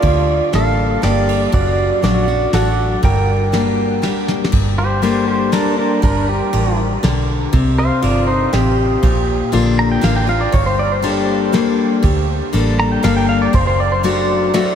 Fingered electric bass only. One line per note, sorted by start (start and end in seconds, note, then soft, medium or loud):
0.03 0.40 D2 medium
0.53 0.96 A1 medium
1.03 1.46 G1 medium
1.53 1.90 F#1 medium
2.03 2.46 A#1 medium
2.53 2.96 A1 medium
3.03 4.13 G1 medium
4.53 5.62 G1 medium
6.03 6.40 G1 medium
6.53 6.96 A1 medium
7.03 7.46 B1 medium
7.54 7.90 C2 medium
8.03 8.46 G1 medium
8.53 8.96 A1 medium
9.03 9.40 A#1 medium
9.53 9.96 A#1 medium
10.03 10.46 A1 medium
10.54 11.63 G1 medium
12.04 12.40 D2 medium
12.54 12.96 A1 medium
13.04 13.46 G1 medium
13.54 14.63 F#1 medium